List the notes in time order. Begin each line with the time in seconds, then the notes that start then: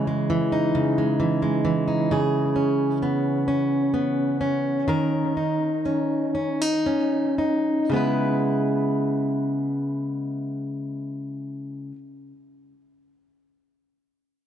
Already playing: C#3 E3 C#4
0.07 G#3
0.30 E3
0.52 D#4
0.75 C#3
0.98 G#3
1.20 E3
1.42 G#3
1.65 E3
1.88 D#4
2.11 C#3 G#4
2.56 C#4
3.02 B3
3.48 C#4
3.94 B3
4.41 C#4
4.88 D#3 A#4
5.37 D#4
5.86 C#4
6.35 C#4
6.62 D#4
6.86 C#4
7.38 D#4
7.90 C#3 G#3 B3
7.95 E4 B4